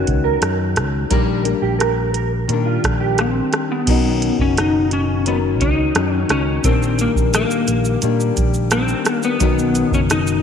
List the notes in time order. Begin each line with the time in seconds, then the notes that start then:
Already playing: D#3 F#3 C#4 D#4
0.07 C#2, kick, closed hi-hat
0.24 A#4
0.42 F#2, cross-stick, closed hi-hat
0.76 C#2, cross-stick, closed hi-hat
1.10 A#1 A#2 D#3 G3 A#3 D4 A#4, kick, closed hi-hat
1.45 G3 A#3 D4, closed hi-hat
1.62 A#1 G4
1.79 A#4, cross-stick, closed hi-hat
2.13 A#4, closed hi-hat
2.48 A#2 D#3 G3 A#3, closed hi-hat
2.53 D4
2.65 F4
2.84 A#1, kick, cross-stick, closed hi-hat
3.00 G4
3.18 C4, cross-stick, closed hi-hat
3.53 cross-stick, closed hi-hat
3.72 B3
3.86 B1 B2 D#3 F#3 C#4 D#4, kick, closed hi-hat, crash
4.22 closed hi-hat
4.39 F#1 C#4, kick
4.57 D#4, cross-stick, closed hi-hat
4.91 C#4, closed hi-hat
5.25 D#3 F#3 B3 C#4 D#4, closed hi-hat
5.61 C#2 D#4, kick, closed hi-hat
5.95 F#2 D#3 F#3 C#4 D#4, cross-stick, closed hi-hat
6.15 C#4
6.29 C#2 C#4, cross-stick, closed hi-hat
6.63 A#1 A#2 D#3 G3 A#3 C4, kick, closed hi-hat, shaker
6.67 D4
6.83 shaker
6.99 A#3, closed hi-hat, shaker
7.15 A#1, kick, shaker
7.34 A#3, cross-stick, closed hi-hat, shaker
7.51 shaker
7.68 A#1, closed hi-hat, shaker
7.85 shaker
8.02 A#2 D#3 G3 A#3 D4, closed hi-hat, shaker
8.20 shaker
8.37 A#1, kick, closed hi-hat, shaker
8.54 shaker
8.71 D#3 G3 A#3 C4 D4, cross-stick, closed hi-hat, shaker
8.88 shaker
9.05 cross-stick, closed hi-hat, shaker
9.23 B3, shaker
9.40 B1 B2 D#3 F#3 C#4 D#4, kick, closed hi-hat, shaker
9.59 shaker
9.75 closed hi-hat, shaker
9.92 F#1 C#4, kick, shaker
10.10 D#4, cross-stick, closed hi-hat, shaker
10.27 shaker